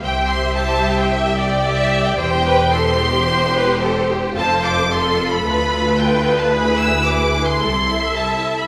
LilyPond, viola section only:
\new Staff \with { instrumentName = "Viola section" } { \time 4/4 \key c \major \tempo 4 = 111 c''2 e''8 d''4. | c''8 b'8 a'8 g'8 c''8 b'8 a'8 g'8 | \key a \minor c''4 a'4 b'2~ | b'2 a'8 e''4. | }